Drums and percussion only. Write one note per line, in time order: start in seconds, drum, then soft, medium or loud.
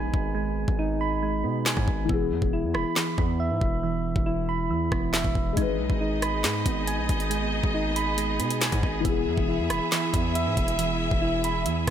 0.14 kick loud
0.68 kick medium
1.66 snare loud
1.66 clap medium
1.77 kick medium
1.88 kick medium
2.09 kick loud
2.42 kick medium
2.75 cross-stick loud
2.96 snare loud
2.96 clap medium
3.18 kick loud
3.61 kick medium
4.16 kick medium
4.92 kick loud
4.92 cross-stick loud
5.14 snare loud
5.14 clap loud
5.24 kick medium
5.35 kick medium
5.57 kick loud
5.57 closed hi-hat medium
5.90 kick medium
6.22 cross-stick loud
6.22 closed hi-hat medium
6.44 snare loud
6.44 clap medium
6.44 closed hi-hat medium
6.66 kick loud
6.66 closed hi-hat medium
6.87 closed hi-hat medium
7.09 kick medium
7.09 closed hi-hat medium
7.20 closed hi-hat medium
7.31 closed hi-hat medium
7.64 kick medium
7.96 closed hi-hat medium
8.18 closed hi-hat medium
8.40 closed hi-hat medium
8.51 closed hi-hat medium
8.61 snare loud
8.61 clap loud
8.61 closed hi-hat medium
8.72 kick medium
8.72 closed hi-hat medium
8.83 kick medium
9.05 kick loud
9.05 closed hi-hat medium
9.38 kick medium
9.70 cross-stick loud
9.70 closed hi-hat medium
9.92 snare loud
9.92 clap medium
9.92 closed hi-hat medium
10.14 kick medium
10.14 closed hi-hat medium
10.35 closed hi-hat medium
10.57 kick medium
10.57 closed hi-hat medium
10.68 closed hi-hat medium
10.79 closed hi-hat medium
11.11 kick medium
11.44 closed hi-hat medium
11.66 closed hi-hat medium